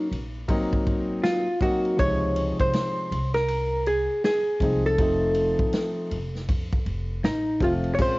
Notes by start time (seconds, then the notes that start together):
Already playing: F#3 A#3 C#4 F5
0.11 A#1, ride
0.48 G#1 F#3 A#3 C4 D#4, kick, ride
0.73 kick
0.86 kick, ride
1.24 F4, snare, hi-hat pedal, ride
1.61 F#3 A#3 C4 D#4 F#4, kick, ride
1.85 ride
1.97 C#2 C3 F3 G#3 D#4 C#5, kick, ride
2.36 ride
2.59 C2 C5, kick, ride
2.73 snare, hi-hat pedal, ride
3.11 C2, ride
3.34 A#4, snare, ride
3.48 ride
3.86 G#4, ride
4.24 G#4, snare, hi-hat pedal, ride
4.60 C2 F3 G#3 C4 D#4, kick, ride
4.86 A4
4.98 F1 F3 A3 C4 D#4, kick, ride
5.35 ride
5.59 A1, kick
5.73 snare, hi-hat pedal, ride
6.11 F1, ride
6.35 snare
6.48 F2, kick, ride
6.72 kick
6.86 F1, ride
7.24 A1 D#4, snare, hi-hat pedal, ride
7.60 F1 F3 A3 C4 F4, kick, ride
7.83 ride
7.95 G#3 C#5, crash
7.99 A#1 C4 C#4 F4 C5, kick